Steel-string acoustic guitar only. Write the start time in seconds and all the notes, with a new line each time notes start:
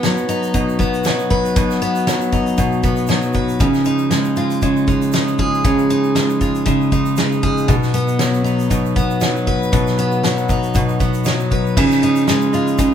Already playing: B2 B3
0.03 F#3
0.29 D#4
0.54 B2
0.79 B3
1.05 F#3
1.30 B4
1.56 B2
1.82 B3
2.07 F#3
2.32 D#4
2.58 B2
2.83 B3
3.09 F#3
3.34 B4
3.61 C#3
3.86 D#4
4.11 G#3
4.37 F4
4.63 C#3
4.88 D#4
5.14 G#3
5.39 G#4
5.65 C#3
5.90 D#4
6.16 G#3
6.41 F4
6.66 C#3
6.92 D#4
7.18 G#3
7.43 G#4
7.68 B2
7.94 B3
8.19 F#3
8.44 D#4
8.71 B2
8.96 B3
9.21 F#3
9.47 B4
9.73 B2
9.99 B3
10.24 F#3
10.50 D#4
10.75 B2
11.01 B3
11.26 F#3
11.52 B4
11.77 C#3
12.03 D#4
12.29 G#3
12.54 F4
12.79 C#3